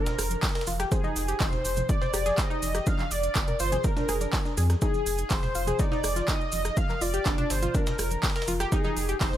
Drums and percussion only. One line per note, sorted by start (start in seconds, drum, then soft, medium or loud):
0.07 snare loud
0.07 low conga medium
0.07 cabasa soft
0.07 shaker medium
0.19 cross-stick medium
0.19 closed hi-hat soft
0.19 open hi-hat loud
0.19 cabasa loud
0.30 closed hi-hat medium
0.30 high conga medium
0.30 cabasa soft
0.30 shaker medium
0.43 kick loud
0.43 snare medium
0.43 clap loud
0.43 closed hi-hat medium
0.43 open hi-hat medium
0.43 cabasa medium
0.49 snare medium
0.49 open hi-hat medium
0.55 snare medium
0.55 open hi-hat medium
0.55 cabasa soft
0.61 snare medium
0.61 open hi-hat medium
0.67 open hi-hat medium
0.67 high conga medium
0.67 cabasa medium
0.67 shaker medium
0.80 cross-stick medium
0.80 snare soft
0.80 closed hi-hat medium
0.80 cabasa soft
0.92 kick loud
0.92 closed hi-hat soft
0.92 cabasa medium
0.92 shaker medium
1.03 high conga medium
1.03 cabasa soft
1.16 open hi-hat loud
1.16 cabasa medium
1.16 shaker medium
1.28 closed hi-hat medium
1.28 cabasa soft
1.40 kick loud
1.40 snare loud
1.40 clap loud
1.40 closed hi-hat medium
1.40 open hi-hat medium
1.40 high conga medium
1.40 cabasa medium
1.52 snare soft
1.52 low conga medium
1.52 cabasa soft
1.65 open hi-hat loud
1.65 cabasa medium
1.65 shaker medium
1.76 closed hi-hat medium
1.76 high conga medium
1.76 low conga medium
1.76 cabasa soft
1.89 kick loud
1.89 closed hi-hat soft
1.89 cabasa medium
1.89 shaker medium
2.01 snare soft
2.01 low conga medium
2.01 cabasa soft
2.14 cross-stick medium
2.14 open hi-hat loud
2.14 cabasa medium
2.14 shaker medium
2.26 snare soft
2.26 closed hi-hat medium
2.26 high conga medium
2.26 cabasa soft
2.38 kick loud
2.38 snare loud
2.38 clap loud
2.38 closed hi-hat soft
2.38 cabasa medium
2.38 shaker medium
2.51 cabasa soft
2.62 open hi-hat medium
2.62 high conga medium
2.62 cabasa medium
2.62 shaker medium
2.75 cross-stick medium
2.75 snare soft
2.75 closed hi-hat medium
2.75 cabasa soft
2.86 kick loud
2.86 closed hi-hat soft
2.86 cabasa soft
2.86 shaker medium
2.99 clap soft
2.99 high conga medium
2.99 cabasa soft
3.11 open hi-hat loud
3.11 cabasa medium
3.11 shaker medium
3.23 closed hi-hat medium
3.23 cabasa soft
3.35 kick loud
3.35 snare loud
3.35 clap loud
3.35 closed hi-hat soft
3.35 high conga medium
3.35 cabasa medium
3.35 shaker medium
3.47 closed hi-hat soft
3.47 low conga medium
3.47 cabasa soft
3.59 open hi-hat loud
3.59 cabasa medium
3.59 shaker medium
3.72 closed hi-hat medium
3.72 closed hi-hat soft
3.72 high conga medium
3.72 low conga medium
3.72 cabasa soft
3.84 kick loud
3.84 closed hi-hat soft
3.84 cabasa medium
3.84 shaker medium
3.97 snare medium
3.97 low conga medium
3.97 cabasa soft
4.09 cross-stick medium
4.09 open hi-hat loud
4.09 cabasa medium
4.09 shaker medium
4.20 closed hi-hat medium
4.20 high conga medium
4.20 cabasa soft
4.33 kick loud
4.33 snare loud
4.33 clap loud
4.33 closed hi-hat soft
4.33 open hi-hat medium
4.33 cabasa medium
4.45 snare soft
4.45 cabasa soft
4.57 open hi-hat medium
4.57 high conga medium
4.57 cabasa loud
4.57 shaker medium
4.70 cross-stick medium
4.70 snare soft
4.70 closed hi-hat medium
4.70 cabasa soft
4.81 kick loud
4.81 closed hi-hat soft
4.81 cabasa soft
4.81 shaker medium
4.94 high conga medium
4.94 cabasa soft
5.06 open hi-hat loud
5.06 cabasa medium
5.06 shaker medium
5.17 closed hi-hat medium
5.17 cabasa soft
5.30 kick loud
5.30 snare loud
5.30 clap loud
5.30 closed hi-hat medium
5.30 open hi-hat medium
5.30 high conga medium
5.30 cabasa medium
5.43 snare soft
5.43 low conga medium
5.43 cabasa soft
5.55 open hi-hat medium
5.55 cabasa medium
5.55 shaker medium
5.67 closed hi-hat medium
5.67 high conga medium
5.67 low conga medium
5.67 cabasa soft
5.79 kick loud
5.79 closed hi-hat medium
5.79 cabasa medium
5.79 shaker medium
5.91 snare soft
5.91 low conga medium
5.91 cabasa soft
6.04 cross-stick medium
6.04 open hi-hat loud
6.04 cabasa medium
6.04 shaker medium
6.15 snare soft
6.15 closed hi-hat medium
6.15 high conga medium
6.15 cabasa soft
6.28 kick loud
6.28 snare loud
6.28 clap loud
6.28 closed hi-hat soft
6.28 cabasa medium
6.28 shaker medium
6.41 cabasa soft
6.52 open hi-hat medium
6.52 high conga medium
6.52 cabasa loud
6.52 shaker medium
6.65 cross-stick medium
6.65 snare soft
6.65 closed hi-hat medium
6.65 cabasa soft
6.77 kick loud
6.77 closed hi-hat soft
6.77 cabasa soft
6.77 shaker medium
6.89 clap soft
6.89 high conga medium
6.89 cabasa soft
7.01 open hi-hat medium
7.01 cabasa medium
7.01 shaker medium
7.14 closed hi-hat medium
7.14 cabasa soft
7.25 kick loud
7.25 snare loud
7.25 clap loud
7.25 closed hi-hat medium
7.25 high conga medium
7.25 cabasa soft
7.25 shaker medium
7.38 closed hi-hat soft
7.38 low conga medium
7.38 cabasa soft
7.50 snare loud
7.50 open hi-hat medium
7.50 cabasa medium
7.50 shaker medium
7.62 closed hi-hat medium
7.62 closed hi-hat soft
7.62 high conga medium
7.62 low conga medium
7.62 cabasa soft
7.74 kick loud
7.74 closed hi-hat medium
7.74 cabasa soft
7.74 shaker medium
7.86 snare loud
7.86 low conga medium
7.86 cabasa soft
7.86 shaker medium
7.99 cross-stick medium
7.99 closed hi-hat soft
7.99 open hi-hat loud
7.99 cabasa medium
8.10 closed hi-hat medium
8.10 high conga medium
8.10 cabasa soft
8.10 shaker medium
8.23 kick loud
8.23 snare medium
8.23 clap loud
8.23 closed hi-hat medium
8.23 open hi-hat medium
8.23 cabasa soft
8.30 snare medium
8.30 open hi-hat medium
8.36 snare medium
8.36 open hi-hat medium
8.36 cabasa soft
8.42 snare medium
8.42 open hi-hat medium
8.47 open hi-hat medium
8.47 high conga medium
8.47 cabasa medium
8.47 shaker medium
8.60 cross-stick medium
8.60 snare soft
8.60 closed hi-hat medium
8.60 cabasa soft
8.72 kick loud
8.72 closed hi-hat medium
8.72 cabasa medium
8.72 shaker medium
8.84 high conga loud
8.84 cabasa soft
8.97 open hi-hat medium
8.97 cabasa medium
8.97 shaker medium
9.09 closed hi-hat medium
9.09 cabasa soft
9.20 kick loud
9.20 snare loud
9.20 clap loud
9.20 closed hi-hat medium
9.20 open hi-hat medium
9.20 high conga medium
9.20 cabasa soft
9.33 snare soft
9.33 low conga medium
9.33 cabasa soft